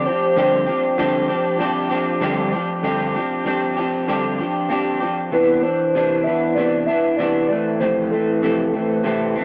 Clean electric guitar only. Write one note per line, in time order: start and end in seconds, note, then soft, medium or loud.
0.05 0.36 F3 soft
0.05 0.36 C4 soft
0.05 0.37 D4 soft
0.05 0.36 G4 medium
0.36 0.67 G2 medium
0.36 0.67 D3 medium
0.36 0.68 F3 medium
0.36 0.68 C4 medium
0.36 0.67 D4 medium
0.36 0.65 G4 medium
0.66 0.97 F3 soft
0.66 0.98 C4 soft
0.66 0.98 D4 medium
0.66 0.98 G4 medium
0.98 1.29 G2 medium
0.98 1.29 D3 medium
0.98 1.29 F3 medium
0.98 1.29 C4 loud
0.98 1.28 D4 loud
0.98 1.27 G4 medium
1.28 1.57 F3 medium
1.28 1.59 C4 medium
1.28 1.59 D4 medium
1.28 1.59 G4 medium
1.59 1.90 F3 medium
1.59 1.90 C4 medium
1.59 1.90 D4 medium
1.59 1.88 G4 medium
1.89 2.21 F3 medium
1.89 2.21 C4 medium
1.89 2.21 D4 medium
1.89 2.21 G4 medium
2.21 2.52 G2 medium
2.21 2.52 D3 medium
2.21 2.53 F3 loud
2.21 2.53 C4 loud
2.21 2.52 D4 loud
2.21 2.51 G4 loud
2.52 2.82 F3 soft
2.52 2.83 C4 soft
2.52 2.83 D4 medium
2.52 2.83 G4 medium
2.83 3.14 G2 medium
2.83 3.14 D3 medium
2.83 3.15 F3 medium
2.83 3.15 C4 medium
2.83 3.14 D4 medium
2.83 3.13 G4 medium
3.14 3.44 F3 medium
3.14 3.45 C4 medium
3.14 3.46 D4 medium
3.14 3.46 G4 medium
3.45 3.77 F3 medium
3.45 3.77 C4 medium
3.45 3.77 D4 medium
3.45 3.76 G4 medium
3.77 4.08 F3 soft
3.77 4.08 C4 soft
3.77 4.08 D4 medium
3.77 4.08 G4 medium
4.08 4.39 G2 medium
4.08 4.39 D3 medium
4.08 4.39 F3 medium
4.08 4.39 C4 medium
4.08 4.38 D4 loud
4.08 4.37 G4 medium
4.38 4.68 F3 medium
4.38 4.69 C4 medium
4.38 4.70 D4 medium
4.38 4.70 G4 soft
4.69 5.01 F3 medium
4.69 5.01 C4 medium
4.69 5.00 D4 medium
4.69 4.99 G4 medium
5.00 5.32 F3 soft
5.00 5.32 C4 soft
5.00 5.32 D4 medium
5.00 5.32 G4 medium
5.32 5.63 C3 medium
5.32 5.63 E3 medium
5.32 5.64 B3 medium
5.32 5.62 D4 medium
5.63 5.95 E3 soft
5.63 5.94 D4 medium
5.95 6.26 C3 medium
5.95 6.26 E3 medium
5.95 6.25 D4 medium
6.26 6.56 E3 soft
6.26 6.57 B3 soft
6.26 6.57 D4 soft
6.56 6.87 C3 medium
6.56 6.88 E3 medium
6.56 6.88 B3 medium
6.56 6.87 D4 medium
6.88 7.18 E3 soft
6.88 7.19 B3 soft
6.88 7.19 D4 soft
7.19 7.50 C3 medium
7.19 7.50 E3 medium
7.19 7.50 B3 medium
7.19 7.49 D4 medium
7.49 7.80 E3 soft
7.49 7.80 A3 soft
7.49 7.80 C4 soft
7.80 8.12 F2 medium
7.80 8.12 C3 medium
7.80 8.12 E3 medium
7.80 8.12 A3 medium
7.80 8.11 C4 medium
8.12 8.42 E3 soft
8.12 8.43 A3 medium
8.12 8.43 C4 medium
8.42 8.74 F2 medium
8.42 8.74 C3 medium
8.42 8.74 E3 medium
8.42 8.74 A3 medium
8.42 8.72 C4 medium
8.74 9.03 E3 soft
8.74 9.04 A3 soft
8.74 9.05 C4 medium
9.04 9.35 C3 medium
9.04 9.36 E3 medium
9.04 9.36 A3 medium
9.04 9.34 C4 medium
9.36 9.45 E3 soft
9.36 9.45 A3 medium
9.36 9.45 C4 medium